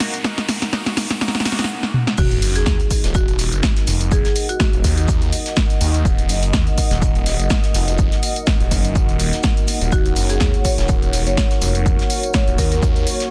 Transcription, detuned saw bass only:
0, 0, Header, 1, 2, 480
1, 0, Start_track
1, 0, Key_signature, -6, "minor"
1, 0, Tempo, 483871
1, 243, Time_signature, 4, 2, 24, 8
1, 13200, End_track
2, 0, Start_track
2, 0, Title_t, "Detuned saw bass"
2, 0, Program_c, 0, 39
2, 2163, Note_on_c, 0, 27, 94
2, 2386, Note_off_c, 0, 27, 0
2, 2403, Note_on_c, 0, 30, 99
2, 2626, Note_off_c, 0, 30, 0
2, 2643, Note_on_c, 0, 39, 91
2, 2755, Note_off_c, 0, 39, 0
2, 3015, Note_on_c, 0, 27, 99
2, 3475, Note_off_c, 0, 27, 0
2, 3496, Note_on_c, 0, 30, 97
2, 3586, Note_off_c, 0, 30, 0
2, 3843, Note_on_c, 0, 29, 105
2, 4195, Note_off_c, 0, 29, 0
2, 4696, Note_on_c, 0, 27, 95
2, 4786, Note_off_c, 0, 27, 0
2, 4803, Note_on_c, 0, 39, 103
2, 5266, Note_off_c, 0, 39, 0
2, 5763, Note_on_c, 0, 39, 105
2, 5986, Note_off_c, 0, 39, 0
2, 6003, Note_on_c, 0, 27, 97
2, 6226, Note_off_c, 0, 27, 0
2, 6243, Note_on_c, 0, 30, 96
2, 6466, Note_off_c, 0, 30, 0
2, 6483, Note_on_c, 0, 39, 96
2, 6595, Note_off_c, 0, 39, 0
2, 6856, Note_on_c, 0, 27, 100
2, 7315, Note_off_c, 0, 27, 0
2, 7336, Note_on_c, 0, 30, 97
2, 7426, Note_off_c, 0, 30, 0
2, 7683, Note_on_c, 0, 29, 99
2, 8035, Note_off_c, 0, 29, 0
2, 8536, Note_on_c, 0, 27, 95
2, 8626, Note_off_c, 0, 27, 0
2, 8643, Note_on_c, 0, 30, 98
2, 8995, Note_off_c, 0, 30, 0
2, 9016, Note_on_c, 0, 27, 99
2, 9235, Note_off_c, 0, 27, 0
2, 9736, Note_on_c, 0, 27, 99
2, 9826, Note_off_c, 0, 27, 0
2, 9843, Note_on_c, 0, 27, 98
2, 10066, Note_off_c, 0, 27, 0
2, 10083, Note_on_c, 0, 30, 96
2, 10306, Note_off_c, 0, 30, 0
2, 10323, Note_on_c, 0, 39, 95
2, 10435, Note_off_c, 0, 39, 0
2, 10696, Note_on_c, 0, 27, 101
2, 11155, Note_off_c, 0, 27, 0
2, 11176, Note_on_c, 0, 30, 92
2, 11266, Note_off_c, 0, 30, 0
2, 11523, Note_on_c, 0, 29, 99
2, 11875, Note_off_c, 0, 29, 0
2, 12377, Note_on_c, 0, 27, 96
2, 12466, Note_off_c, 0, 27, 0
2, 12483, Note_on_c, 0, 39, 99
2, 12946, Note_off_c, 0, 39, 0
2, 13200, End_track
0, 0, End_of_file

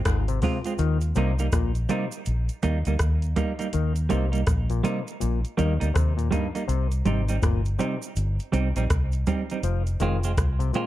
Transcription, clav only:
0, 0, Header, 1, 2, 480
1, 0, Start_track
1, 0, Key_signature, -3, "major"
1, 0, Tempo, 737101
1, 516, Time_signature, 4, 2, 24, 8
1, 7075, End_track
2, 0, Start_track
2, 0, Title_t, "Clav"
2, 0, Program_c, 0, 7
2, 38, Note_on_c, 0, 44, 82
2, 160, Note_off_c, 0, 44, 0
2, 184, Note_on_c, 0, 48, 84
2, 259, Note_off_c, 0, 48, 0
2, 274, Note_on_c, 0, 48, 83
2, 398, Note_off_c, 0, 48, 0
2, 512, Note_on_c, 0, 51, 101
2, 637, Note_off_c, 0, 51, 0
2, 753, Note_on_c, 0, 48, 89
2, 877, Note_off_c, 0, 48, 0
2, 995, Note_on_c, 0, 46, 83
2, 1119, Note_off_c, 0, 46, 0
2, 1230, Note_on_c, 0, 48, 84
2, 1356, Note_off_c, 0, 48, 0
2, 2433, Note_on_c, 0, 51, 80
2, 2558, Note_off_c, 0, 51, 0
2, 2669, Note_on_c, 0, 48, 81
2, 2795, Note_off_c, 0, 48, 0
2, 3061, Note_on_c, 0, 46, 74
2, 3138, Note_off_c, 0, 46, 0
2, 3148, Note_on_c, 0, 48, 85
2, 3275, Note_off_c, 0, 48, 0
2, 3389, Note_on_c, 0, 46, 85
2, 3515, Note_off_c, 0, 46, 0
2, 3629, Note_on_c, 0, 51, 70
2, 3756, Note_off_c, 0, 51, 0
2, 3868, Note_on_c, 0, 48, 86
2, 3995, Note_off_c, 0, 48, 0
2, 4018, Note_on_c, 0, 46, 82
2, 4096, Note_off_c, 0, 46, 0
2, 4106, Note_on_c, 0, 43, 80
2, 4234, Note_off_c, 0, 43, 0
2, 4348, Note_on_c, 0, 48, 99
2, 4475, Note_off_c, 0, 48, 0
2, 4594, Note_on_c, 0, 48, 87
2, 4718, Note_off_c, 0, 48, 0
2, 4834, Note_on_c, 0, 46, 89
2, 4959, Note_off_c, 0, 46, 0
2, 5071, Note_on_c, 0, 48, 82
2, 5197, Note_off_c, 0, 48, 0
2, 6276, Note_on_c, 0, 53, 81
2, 6400, Note_off_c, 0, 53, 0
2, 6512, Note_on_c, 0, 51, 83
2, 6638, Note_off_c, 0, 51, 0
2, 6898, Note_on_c, 0, 48, 79
2, 6977, Note_off_c, 0, 48, 0
2, 6989, Note_on_c, 0, 46, 79
2, 7075, Note_off_c, 0, 46, 0
2, 7075, End_track
0, 0, End_of_file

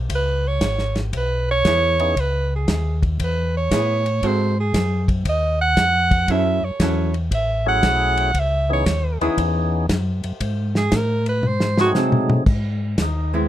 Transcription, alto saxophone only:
0, 0, Header, 1, 2, 480
1, 0, Start_track
1, 0, Key_signature, 4, "minor"
1, 0, Tempo, 515110
1, 99, Time_signature, 4, 2, 24, 8
1, 12563, End_track
2, 0, Start_track
2, 0, Title_t, "Alto saxophone"
2, 0, Program_c, 0, 65
2, 139, Note_on_c, 0, 71, 84
2, 445, Note_on_c, 0, 73, 96
2, 459, Note_off_c, 0, 71, 0
2, 913, Note_off_c, 0, 73, 0
2, 1091, Note_on_c, 0, 71, 84
2, 1375, Note_off_c, 0, 71, 0
2, 1406, Note_on_c, 0, 73, 118
2, 2052, Note_on_c, 0, 71, 92
2, 2066, Note_off_c, 0, 73, 0
2, 2357, Note_off_c, 0, 71, 0
2, 2380, Note_on_c, 0, 68, 61
2, 2808, Note_off_c, 0, 68, 0
2, 3018, Note_on_c, 0, 71, 79
2, 3299, Note_off_c, 0, 71, 0
2, 3328, Note_on_c, 0, 73, 95
2, 3973, Note_on_c, 0, 72, 79
2, 3987, Note_off_c, 0, 73, 0
2, 4278, Note_off_c, 0, 72, 0
2, 4287, Note_on_c, 0, 68, 74
2, 4721, Note_off_c, 0, 68, 0
2, 4930, Note_on_c, 0, 75, 86
2, 5215, Note_off_c, 0, 75, 0
2, 5230, Note_on_c, 0, 78, 110
2, 5880, Note_on_c, 0, 76, 91
2, 5894, Note_off_c, 0, 78, 0
2, 6191, Note_on_c, 0, 73, 71
2, 6205, Note_off_c, 0, 76, 0
2, 6666, Note_off_c, 0, 73, 0
2, 6844, Note_on_c, 0, 76, 78
2, 7131, Note_off_c, 0, 76, 0
2, 7158, Note_on_c, 0, 78, 106
2, 7822, Note_on_c, 0, 76, 88
2, 7836, Note_off_c, 0, 78, 0
2, 8122, Note_off_c, 0, 76, 0
2, 8135, Note_on_c, 0, 73, 80
2, 8565, Note_off_c, 0, 73, 0
2, 10037, Note_on_c, 0, 68, 89
2, 10209, Note_on_c, 0, 70, 80
2, 10223, Note_off_c, 0, 68, 0
2, 10512, Note_off_c, 0, 70, 0
2, 10517, Note_on_c, 0, 71, 88
2, 10691, Note_on_c, 0, 72, 97
2, 10705, Note_off_c, 0, 71, 0
2, 10996, Note_off_c, 0, 72, 0
2, 11005, Note_on_c, 0, 66, 107
2, 11092, Note_off_c, 0, 66, 0
2, 12563, End_track
0, 0, End_of_file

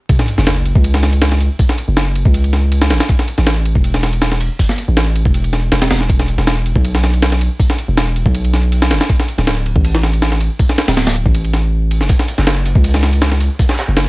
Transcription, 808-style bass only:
0, 0, Header, 1, 2, 480
1, 0, Start_track
1, 0, Key_signature, 3, "minor"
1, 0, Tempo, 375000
1, 120, Time_signature, 4, 2, 24, 8
1, 18033, End_track
2, 0, Start_track
2, 0, Title_t, "808-style bass"
2, 0, Program_c, 0, 38
2, 489, Note_on_c, 0, 30, 98
2, 948, Note_off_c, 0, 30, 0
2, 965, Note_on_c, 0, 37, 95
2, 1906, Note_off_c, 0, 37, 0
2, 2406, Note_on_c, 0, 30, 97
2, 2866, Note_off_c, 0, 30, 0
2, 2886, Note_on_c, 0, 37, 92
2, 3720, Note_on_c, 0, 33, 94
2, 3739, Note_off_c, 0, 37, 0
2, 3833, Note_off_c, 0, 33, 0
2, 4328, Note_on_c, 0, 33, 93
2, 4787, Note_off_c, 0, 33, 0
2, 4806, Note_on_c, 0, 28, 92
2, 5746, Note_off_c, 0, 28, 0
2, 6248, Note_on_c, 0, 33, 96
2, 6707, Note_off_c, 0, 33, 0
2, 6726, Note_on_c, 0, 28, 94
2, 7311, Note_off_c, 0, 28, 0
2, 7319, Note_on_c, 0, 28, 107
2, 7537, Note_off_c, 0, 28, 0
2, 7561, Note_on_c, 0, 28, 89
2, 8147, Note_off_c, 0, 28, 0
2, 8164, Note_on_c, 0, 28, 94
2, 8625, Note_off_c, 0, 28, 0
2, 8648, Note_on_c, 0, 35, 91
2, 9587, Note_off_c, 0, 35, 0
2, 10090, Note_on_c, 0, 28, 96
2, 10548, Note_off_c, 0, 28, 0
2, 10568, Note_on_c, 0, 35, 95
2, 11403, Note_on_c, 0, 31, 91
2, 11422, Note_off_c, 0, 35, 0
2, 11515, Note_off_c, 0, 31, 0
2, 12007, Note_on_c, 0, 26, 98
2, 12466, Note_off_c, 0, 26, 0
2, 12489, Note_on_c, 0, 33, 97
2, 13427, Note_off_c, 0, 33, 0
2, 13926, Note_on_c, 0, 26, 96
2, 14386, Note_off_c, 0, 26, 0
2, 14408, Note_on_c, 0, 33, 90
2, 15370, Note_on_c, 0, 29, 78
2, 15389, Note_off_c, 0, 33, 0
2, 15470, Note_off_c, 0, 29, 0
2, 15850, Note_on_c, 0, 30, 98
2, 16308, Note_off_c, 0, 30, 0
2, 16326, Note_on_c, 0, 37, 95
2, 17266, Note_off_c, 0, 37, 0
2, 17768, Note_on_c, 0, 30, 94
2, 18033, Note_off_c, 0, 30, 0
2, 18033, End_track
0, 0, End_of_file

